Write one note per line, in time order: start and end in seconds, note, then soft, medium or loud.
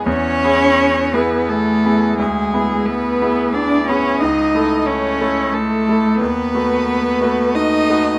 0.06 0.42 E2 medium
0.06 1.15 C#4 medium
0.06 1.16 C#5 medium
0.44 1.10 B3 soft
0.44 1.10 E4 soft
0.44 1.10 G#4 soft
1.13 1.50 B3 medium
1.13 1.80 B3 soft
1.13 1.81 E4 soft
1.13 1.81 G#4 soft
1.13 1.50 B4 medium
1.48 2.18 A3 medium
1.48 2.18 A4 medium
1.85 2.16 B3 soft
1.85 2.16 E4 soft
1.85 2.16 G#4 soft
2.18 2.52 D2 medium
2.18 2.87 G#3 medium
2.18 2.88 G#4 medium
2.54 3.18 B3 soft
2.54 3.18 E4 soft
2.54 3.18 G#4 soft
2.85 3.55 B3 medium
2.85 3.56 B4 medium
3.22 3.84 B3 soft
3.22 3.84 E4 soft
3.22 3.85 G#4 soft
3.53 3.87 D4 medium
3.53 3.89 D5 medium
3.87 4.18 B3 soft
3.87 4.22 C#4 medium
3.87 4.18 E4 soft
3.87 4.18 G#4 soft
3.87 4.20 C#5 medium
4.20 4.53 C#2 medium
4.20 4.88 D#4 medium
4.20 4.88 D#5 medium
4.55 5.17 A3 soft
4.55 5.17 E4 soft
4.55 5.17 A4 soft
4.86 5.54 C#4 medium
4.86 5.55 C#5 medium
5.21 5.84 A3 soft
5.21 5.84 E4 soft
5.21 5.84 A4 soft
5.53 6.19 A3 medium
5.53 6.20 A4 medium
5.89 6.18 A3 soft
5.89 6.18 E4 soft
5.89 6.18 A4 soft
6.20 6.53 D#2 soft
6.20 7.56 B3 medium
6.20 7.57 B4 medium
6.55 7.17 A3 soft
6.55 7.17 F#4 soft
6.55 7.18 B4 soft
7.21 7.85 A3 soft
7.21 7.86 F#4 soft
7.21 7.86 B4 soft
7.55 8.19 D#4 medium
7.55 8.19 D#5 medium
7.90 8.19 A3 soft
7.90 8.19 F#4 soft
7.90 8.19 B4 soft